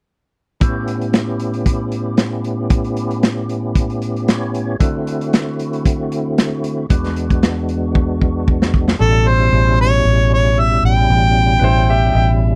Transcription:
0.60 A2 B3 C#4 E4 G4, kick, closed hi-hat
0.88 closed hi-hat
1.01 closed hi-hat
1.13 snare, closed hi-hat
1.40 closed hi-hat
1.54 closed hi-hat
1.66 kick, closed hi-hat
1.92 closed hi-hat
2.17 snare, closed hi-hat
2.44 closed hi-hat
2.70 kick, closed hi-hat
2.84 closed hi-hat
2.97 closed hi-hat
3.11 closed hi-hat
3.23 snare, closed hi-hat
3.49 closed hi-hat
3.75 kick, closed hi-hat
3.90 closed hi-hat
4.02 closed hi-hat
4.16 closed hi-hat
4.28 C#5, snare, closed hi-hat
4.54 closed hi-hat
4.80 D3 A3 C4 E4 F#4, kick, closed hi-hat
5.07 closed hi-hat
5.21 closed hi-hat
5.33 snare, closed hi-hat
5.59 closed hi-hat
5.73 closed hi-hat
5.85 kick, closed hi-hat
6.12 closed hi-hat
6.38 snare, closed hi-hat
6.64 closed hi-hat
6.89 E2 G#3 B3 D4 F#4, kick, closed hi-hat
7.04 snare, closed hi-hat
7.16 closed hi-hat
7.30 kick, closed hi-hat
7.43 snare, closed hi-hat
7.69 closed hi-hat
7.95 kick
8.21 kick
8.48 kick
8.62 snare
8.74 kick
8.88 snare
8.99 A1 B2 G3 C#4 E4 A4
9.28 C5
9.53 A1
9.81 C#5
10.05 A1
10.34 C#5
10.59 E5
10.83 A1 G5
11.10 A1
11.59 A1 B4
11.63 E4 C5
11.89 G4 E5
12.13 A1 D#5 E5

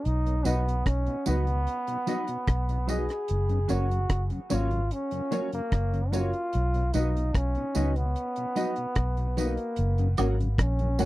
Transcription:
0.05 B1 D#4, closed hi-hat
0.26 B2, closed hi-hat
0.44 B1 F#3 B3 D#4 F#4 B4 D#5, closed hi-hat, tambourine
0.67 B2, closed hi-hat
0.86 B1 C#4, kick, cross-stick, closed hi-hat
1.06 B2, closed hi-hat
1.26 C#2 F#3 B3 D#4 F#4 B4 D#5, closed hi-hat, tambourine
1.47 B2 B4 D#5, closed hi-hat
1.67 closed hi-hat
1.87 B2 B4 D#5, closed hi-hat
2.07 F#3 B3 D#4 F#4 B4 D#5, closed hi-hat, tambourine
2.27 B2, muted clean electric guitar stroke, closed hi-hat
2.47 B1, kick, cross-stick, closed hi-hat
2.69 B2, closed hi-hat
2.87 F#3 B3 D#4 F#4 G#4 B4 D#5, closed hi-hat, tambourine
3.09 cross-stick, closed hi-hat
3.28 F#1, closed hi-hat
3.49 F#2 C#3, closed hi-hat
3.68 F#1 F#3 A#3 C#4 F#4 A#4 C#5, closed hi-hat, tambourine
3.90 F#2 C#3, closed hi-hat
4.09 F#1, kick, cross-stick, closed hi-hat
4.30 F#2 C#3, closed hi-hat
4.50 G#1 F#3 A#3 C#4 F4 F#4 A#4 C#5, closed hi-hat, tambourine
4.71 F#2 C#3 A#4 C#5, closed hi-hat
4.91 C#4, closed hi-hat
5.11 F#2 C#3 A#4 C#5, closed hi-hat
5.31 F#3 A#3 C#4 F#4 A#4 C#5, closed hi-hat, tambourine
5.52 F#2 C#3 A#3, closed hi-hat
5.72 F#1, kick, cross-stick, closed hi-hat
5.93 F#2 C#3, closed hi-hat
6.12 F#3 A#3 C#4 F4 F#4 A#4 C#5, closed hi-hat, tambourine
6.33 closed hi-hat
6.53 B1, closed hi-hat
6.74 B2, closed hi-hat
6.93 B1 F#3 B3 D#4 F#4 B4 D#5, closed hi-hat, tambourine
7.16 B2, closed hi-hat
7.35 B1 C#4, kick, cross-stick, closed hi-hat
7.55 B2, closed hi-hat
7.74 C#2 F#3 B3 D#4 F#4 B4 D#5, closed hi-hat, tambourine
7.96 B2 B3 B4 D#5, closed hi-hat
8.16 closed hi-hat
8.36 B2 B4 D#5, closed hi-hat
8.55 F#3 B3 D#4 F#4 B4 D#5, closed hi-hat, tambourine
8.76 B2, muted clean electric guitar stroke, closed hi-hat
8.95 B1, kick, cross-stick, closed hi-hat
9.17 B2, closed hi-hat
9.37 F#3 A#3 B3 D#4 F#4 B4 D#5, closed hi-hat, tambourine
9.57 closed hi-hat
9.76 F#1, closed hi-hat
9.98 F#2 C#3, closed hi-hat
10.17 G#1 F#3 A#3 C#4 F#4 A#4 C#5 F#5, closed hi-hat, tambourine, high woodblock
10.40 F#2 C#3, closed hi-hat
10.58 A#1 C#4, kick, cross-stick, closed hi-hat
10.79 F#2 C#3, closed hi-hat
10.99 F1 F#3 A#3 C#4 F#4 A#4 C#5 F#5, closed hi-hat, tambourine

